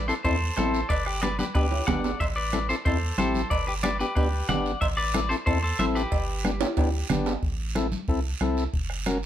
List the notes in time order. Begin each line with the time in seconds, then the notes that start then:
Already playing: A1
0.08 C4 E4 A4 C5, short guiro
0.24 E2 C4 E4 A4 C5, bombo low, cowbell, high conga, long guiro
0.42 high conga
0.57 A1 C4 E4 A4 C5, bombo rim, high conga, low timbale, short guiro
0.74 short guiro
0.89 G1 B4 D5, bombo low, cowbell, long guiro
1.05 G4 B4, bombo rim
1.22 B3 D4 G4 B4 D5, bombo rim, high conga, short guiro
1.39 B3 D4 G4 B4, high conga, short guiro
1.55 D2 B3 D4 G4 B4, bombo low, cowbell, high conga, long guiro
1.71 high conga, high timbale
1.87 G1 B3 D4 G4 D5 F#5, bombo low, bombo rim, high conga, low conga, low timbale, short guiro
2.04 low timbale, short guiro
2.20 A1 C5 E5, bombo low, cowbell, long guiro
2.36 B4 D5
2.53 C4 E4 A4, bombo rim, high conga, short guiro
2.69 C4 E4 A4 C5, short guiro
2.85 E2 C4 E4 A4 C5, bombo low, cowbell, high conga, long guiro
3.02 high conga
3.18 A1 C4 E4 G4 A4 C5, bombo rim, high conga, short guiro
3.35 high conga, short guiro
3.50 G1 B4 D5, bombo low, cowbell, long guiro
3.67 G4 B4
3.83 B3 D4 G4 B4 D5, bombo rim, high conga, short guiro
3.99 B3 D4 G4 B4, short guiro
4.15 D2 B3 D4 G4 B4, bombo low, cowbell, high conga, long guiro
4.33 high conga
4.49 G1 B3 D4 G4 D5 F#5, bombo rim, high conga, low conga, low timbale, short guiro
4.66 short guiro
4.81 A1 C5 E5, bombo low, cowbell, long guiro
4.97 B4 D5
5.14 C4 E4 A4, bombo rim, high conga, short guiro
5.29 C4 E4 A4 C5, short guiro
5.46 E2 C4 E4 A4 C5, bombo low, cowbell, high conga, long guiro
5.63 A4 C5, high conga
5.79 A1 C4 E4 A4 C5 E5, bombo rim, high conga, short guiro
5.95 G4 B4, short guiro
6.12 G1, bombo low, cowbell, long guiro
6.45 B3 D4 G4, bombo rim, high conga, short guiro
6.61 B3 D4 G4, high timbale, short guiro
6.77 D2 B3 D4 G4, bombo low, cowbell, high conga, high timbale, long guiro
6.94 high conga
7.10 G1 B3 D4 G4, bombo rim, high conga, low conga, short guiro
7.26 low timbale, short guiro
7.43 A1, bombo low, long guiro
7.75 C4 E4 A4, bombo rim, high conga, short guiro
7.92 high conga, short guiro
8.08 C2 C4 E4 A4, bombo low, high conga, long guiro
8.25 high conga
8.41 C2 C4 E4 A4, bombo rim, high conga, short guiro
8.57 short guiro
8.74 F#1, bombo low, long guiro
8.90 bombo rim
9.06 C#4 F#4 A#4, bombo rim, high conga, short guiro